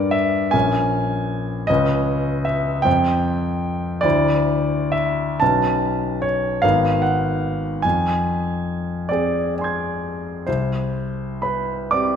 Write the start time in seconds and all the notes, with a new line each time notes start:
Already playing: G2 D4 A#4 D5
0.11 E5
0.51 A#1 C#4 A#4 G#5
1.67 C#2 C#4 B4 D#5
2.45 E5
2.82 F2 C4 C5 G5
4.01 D2 E4 C5 D5
4.92 E5
5.40 B1 C#4 B4 A5
6.22 C#5
6.62 G#1 B3 A#4 F5
7.02 F#5
7.82 F2 G#5
9.09 C4 G#4 D5
9.55 D5 G#5
9.61 C6 G#6
10.47 C2 C5
11.42 B4 B5
11.91 C4 G4 D5 D6